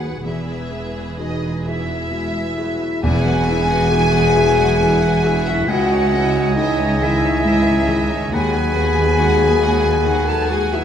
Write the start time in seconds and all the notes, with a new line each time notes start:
Already playing: D#2 D#3 F#3 F#4 G#4 B4 F#5
0.24 E1 E2 E3 G#4 B4 E5
0.71 B3
1.18 D#4 F#4 G#4 D#5
1.65 E3 E4 F#4 G#4 E5
2.11 B2 G#3
2.57 F#3 F#4 G#4
3.01 E1 E2 E3 E4 G#4 E5 F#5 G#5
3.25 F#3 F#4 B4 F#5
3.47 E3 B3 E4 G#4 E5
3.69 F#3 F#4 B4 F#5
3.91 E3 E4 F#4 G#4 E5
4.14 F#3 F#4 B4 F#5
4.35 E3 E4 F#4 G#4 E5
4.58 F#3 F#4 B4 F#5
4.80 B2 E3 E4 G#4 E5
5.03 F#3 F#4 B4 F#5
5.24 E3 E4 F#4 G#4 E5
5.46 F#3 E4 F#4 B4 E5 F#5
5.67 C#2 E3 E4 F#4 D#5 E5 F#5 G#5
5.91 G#3 D#4 C#5 E5
6.12 E3 C#4 E4 D#5 E5
6.35 G#3 D#4 C#5 E5
6.56 E3 D#4 E4 G#4 D#5 E5
6.78 G#3 D#4 C#5 E5
7.00 D#3 E3 E4 G#4 D#5 E5
7.23 G#3 D#4 C#5 E5
7.45 G#2 E3 E4 D#5 E5
7.67 G#3 D#4 C#5 E5
7.88 D#3 E3 E4 G#4 D#5 E5
8.10 G#3 D#4 C#5 E5
8.32 D#2 G#3 F#4 G#4 F#5 G#5 B5
8.54 F#3 G#4 B4 G#5
8.76 G#3 B3 F#4 G#4 F#5
8.99 F#3 G#4 B4 G#5
9.19 G#3 F#4 G#4 F#5
9.42 F#3 G#4 B4 G#5
9.63 G#3 F#4 G#4 F#5
9.85 F#3 G#4 B4 G#5
10.06 D#3 G#3 F#4 G#4 F#5
10.28 F#3 G#4 A4 B4 G#5 A5
10.49 G#3 F#4 G#4 F#5 G#5
10.72 F#3 E4 G#4 B4 E5 G#5